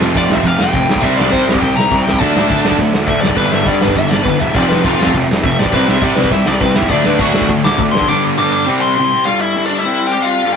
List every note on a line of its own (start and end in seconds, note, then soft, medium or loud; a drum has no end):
0.00 0.11 F1 medium
0.00 0.13 F2 medium
0.00 0.14 C3 medium
0.00 0.15 F3 medium
0.00 0.14 A3 medium
0.00 0.15 C4 medium
0.00 0.13 F4 loud
0.00 snare loud
0.14 0.26 F1 medium
0.14 0.43 F2 medium
0.14 0.43 C3 medium
0.14 0.42 F3 medium
0.14 0.43 A3 medium
0.14 0.43 C4 medium
0.14 0.44 F4 loud
0.14 0.30 D5 medium
0.14 kick loud
0.14 ride medium
0.30 0.40 F1 medium
0.30 0.46 E5 medium
0.30 snare loud
0.37 kick medium
0.43 0.55 F1 medium
0.43 0.57 F2 medium
0.43 0.58 C3 medium
0.43 0.72 F3 medium
0.43 0.72 A3 loud
0.43 0.72 C4 medium
0.43 0.71 F4 loud
0.43 0.60 F5 medium
0.43 kick medium
0.43 ride medium
0.59 0.70 F1 medium
0.59 1.01 G5 medium
0.59 snare loud
0.72 0.84 F1 medium
0.72 0.87 F2 medium
0.72 0.88 C3 medium
0.72 1.02 F3 medium
0.72 1.02 A3 medium
0.72 1.02 C4 loud
0.72 1.01 F4 loud
0.72 kick loud
0.72 ride medium
0.89 0.99 B1 medium
0.89 snare loud
0.96 kick medium
1.01 1.13 C2 medium
1.01 1.32 C3 medium
1.01 1.31 G3 loud
1.01 1.31 C4 loud
1.01 1.30 E4 loud
1.01 1.16 E5 medium
1.01 kick loud
1.01 ride medium
1.17 1.29 C2 loud
1.17 1.32 D5 medium
1.17 snare loud
1.31 1.59 C3 medium
1.31 1.44 C3 medium
1.31 1.60 G3 medium
1.31 1.60 C4 medium
1.31 1.61 E4 loud
1.31 1.46 C5 loud
1.31 kick loud
1.31 ride medium
1.47 1.57 C2 medium
1.47 snare loud
1.55 kick medium
1.61 1.73 C2 medium
1.61 1.90 C3 medium
1.61 1.89 G3 medium
1.61 1.89 C4 loud
1.61 1.89 E4 loud
1.61 1.75 G5 loud
1.61 kick medium
1.61 ride medium
1.77 1.87 C2 medium
1.77 2.02 A#5 medium
1.77 snare loud
1.90 2.02 C2 loud
1.90 2.19 C3 medium
1.90 2.19 G3 medium
1.90 2.19 C4 medium
1.90 2.19 E4 loud
1.90 kick loud
1.90 ride medium
2.03 2.18 G5 medium
2.07 2.17 C2 loud
2.07 snare loud
2.14 kick medium
2.18 2.31 D2 medium
2.18 2.49 D3 loud
2.18 2.49 F#3 loud
2.18 2.48 A3 loud
2.18 2.48 D4 loud
2.18 2.76 A5 loud
2.18 kick loud
2.18 ride medium
2.36 2.46 D2 loud
2.36 snare loud
2.49 2.60 D2 medium
2.49 2.77 D3 medium
2.49 2.78 F#3 medium
2.49 2.78 A3 medium
2.49 2.78 D4 loud
2.49 kick loud
2.49 ride medium
2.65 2.76 D2 medium
2.65 snare loud
2.72 kick medium
2.78 2.90 D2 medium
2.78 3.07 D3 medium
2.78 3.07 F#3 loud
2.78 3.07 A3 loud
2.78 3.06 D4 loud
2.78 kick medium
2.78 ride medium
2.93 3.06 D2 medium
2.93 snare loud
3.07 3.19 D2 loud
3.07 3.35 D3 medium
3.07 3.37 F#3 loud
3.07 3.37 A3 loud
3.07 3.37 D4 loud
3.07 3.21 E5 loud
3.07 kick loud
3.07 ride medium
3.21 3.34 F#1 medium
3.21 3.36 D5 medium
3.21 snare loud
3.29 kick medium
3.37 3.48 G1 medium
3.37 3.67 G2 medium
3.37 3.66 D3 loud
3.37 3.65 G3 loud
3.37 3.65 B3 medium
3.37 3.65 D4 loud
3.37 3.51 B4 medium
3.37 kick medium
3.37 ride medium
3.52 3.64 G1 medium
3.52 3.68 E5 medium
3.52 snare loud
3.65 3.77 G2 medium
3.65 3.94 G2 medium
3.65 3.95 D3 loud
3.65 3.95 G3 medium
3.65 3.96 B3 loud
3.65 3.96 D4 loud
3.65 3.82 D5 medium
3.65 kick loud
3.65 ride medium
3.81 3.93 G1 medium
3.81 3.96 B4 loud
3.81 snare loud
3.88 kick medium
3.95 4.07 G1 medium
3.95 4.25 G2 medium
3.95 4.25 D3 medium
3.95 4.24 G3 medium
3.95 4.24 B3 loud
3.95 4.23 D4 loud
3.95 4.10 E5 loud
3.95 kick medium
3.95 ride medium
4.08 4.22 G1 medium
4.08 4.23 D5 medium
4.08 snare loud
4.23 4.36 G1 medium
4.23 4.54 G2 medium
4.23 4.54 D3 medium
4.23 4.54 G3 loud
4.23 4.54 B3 medium
4.23 4.54 D4 loud
4.23 4.39 B4 medium
4.23 kick loud
4.23 snare medium
4.40 4.56 E1 medium
4.40 4.55 E5 medium
4.40 floor tom medium
4.54 4.66 F1 medium
4.54 4.85 F2 medium
4.54 4.85 C3 medium
4.54 4.85 F3 medium
4.54 4.84 A3 loud
4.54 4.84 C4 loud
4.54 4.68 D5 medium
4.54 kick loud
4.54 crash loud
4.68 4.80 F1 medium
4.68 4.83 B4 medium
4.68 snare loud
4.84 4.96 F1 medium
4.84 5.11 F2 medium
4.84 5.13 C3 medium
4.84 5.13 F3 medium
4.84 5.13 A3 medium
4.84 5.13 C4 loud
4.84 5.14 F4 loud
4.84 kick loud
4.84 ride medium
5.01 5.11 F1 medium
5.01 snare loud
5.07 kick medium
5.13 5.25 F1 medium
5.13 5.44 F2 loud
5.13 5.43 C3 loud
5.13 5.43 F3 medium
5.13 5.43 A3 medium
5.13 5.42 C4 loud
5.13 kick medium
5.13 ride medium
5.30 5.40 F1 medium
5.30 snare loud
5.43 5.55 F1 medium
5.43 5.73 F2 medium
5.43 5.71 C3 medium
5.43 5.72 F3 loud
5.43 5.72 A3 loud
5.43 5.72 C4 loud
5.43 5.59 E5 loud
5.43 kick loud
5.43 ride medium
5.59 5.70 A1 medium
5.59 5.73 D5 medium
5.59 snare loud
5.66 kick medium
5.72 5.83 C2 medium
5.72 6.02 C3 medium
5.72 6.01 G3 loud
5.72 6.01 C4 loud
5.72 6.00 E4 loud
5.72 5.88 B4 medium
5.72 kick loud
5.72 ride medium
5.88 5.99 C2 medium
5.88 6.03 E5 loud
5.88 snare loud
6.01 6.13 C3 loud
6.01 6.31 C3 medium
6.01 6.31 G3 medium
6.01 6.32 C4 loud
6.01 6.32 E4 loud
6.01 6.15 D5 loud
6.01 kick loud
6.01 ride medium
6.15 6.28 C2 medium
6.15 6.30 B4 loud
6.15 snare loud
6.24 kick medium
6.30 6.42 C2 loud
6.30 6.61 C3 medium
6.30 6.61 G3 loud
6.30 6.60 C4 medium
6.30 6.59 E4 loud
6.30 6.46 E5 loud
6.30 kick loud
6.30 ride medium
6.46 6.58 C2 medium
6.46 6.60 D5 medium
6.46 snare loud
6.60 6.72 C2 medium
6.60 6.90 C3 medium
6.60 6.90 G3 medium
6.60 6.90 C4 loud
6.60 6.89 E4 loud
6.60 6.75 B4 loud
6.60 kick loud
6.60 ride medium
6.75 6.88 E2 medium
6.75 6.90 E5 medium
6.75 snare loud
6.82 kick medium
6.88 7.00 D2 medium
6.88 7.20 D3 medium
6.88 7.20 F#3 medium
6.88 7.19 A3 loud
6.88 7.05 D5 medium
6.88 kick loud
6.88 ride medium
6.92 7.19 D4 loud
7.04 7.17 D2 loud
7.04 7.20 B4 medium
7.04 snare loud
7.18 7.30 D2 medium
7.18 7.47 D3 medium
7.18 7.47 F#3 medium
7.18 7.48 A3 loud
7.18 7.48 D4 loud
7.18 7.49 F#4 loud
7.18 kick loud
7.18 ride medium
7.34 7.46 D2 loud
7.34 snare loud
7.41 kick medium
7.48 7.60 D2 loud
7.48 7.78 D3 loud
7.48 7.77 F#3 loud
7.48 7.78 A3 loud
7.48 7.77 D4 loud
7.48 kick loud
7.48 ride medium
7.65 7.75 D2 medium
7.65 7.79 D6 loud
7.65 snare loud
7.78 7.89 D2 loud
7.78 8.07 D3 loud
7.78 8.07 F#3 loud
7.78 8.07 A3 loud
7.78 8.07 D4 loud
7.78 kick loud
7.78 ride medium
7.92 8.04 G2 loud
7.92 8.09 C6 medium
7.92 snare loud
8.01 kick medium
8.08 8.37 G2 loud
8.08 8.37 D3 medium
8.08 8.37 G3 loud
8.08 8.36 B3 loud
8.08 8.36 D4 loud
8.08 8.23 D6 loud
8.37 8.67 G2 medium
8.37 8.66 D3 loud
8.37 8.65 G3 loud
8.37 8.66 B3 loud
8.37 8.66 D4 loud
8.37 8.51 D6 medium
8.52 8.67 D6 loud
8.67 8.98 C3 loud
8.67 8.97 G3 loud
8.67 8.97 C4 loud
8.67 8.96 E4 loud
8.81 8.94 C6 medium
8.95 9.26 C3 loud
8.95 9.26 G3 loud
8.95 9.26 C4 loud
8.95 9.25 E4 loud
8.95 9.24 C6 loud
9.25 9.55 G2 loud
9.25 9.55 D3 loud
9.25 9.55 G3 loud
9.25 9.40 F4 medium
9.25 9.40 F5 medium
9.41 9.69 E4 medium
9.41 9.66 E5 medium
9.56 9.84 G2 medium
9.56 9.84 D3 loud
9.56 9.84 G3 loud
9.66 9.83 D4 medium
9.66 9.79 D5 medium
9.79 10.10 E4 medium
9.79 10.12 E5 loud
9.85 10.14 C3 loud
9.85 10.14 G3 loud
9.85 10.14 C4 loud
10.07 10.26 G5 loud
10.12 10.43 C3 medium
10.12 10.43 G3 loud
10.12 10.43 C4 loud
10.12 10.25 G4 medium
10.22 10.54 F4 medium
10.22 10.56 F5 loud
10.45 10.56 G2 loud
10.45 10.56 D3 loud
10.45 10.56 G3 loud
10.53 10.56 G5 loud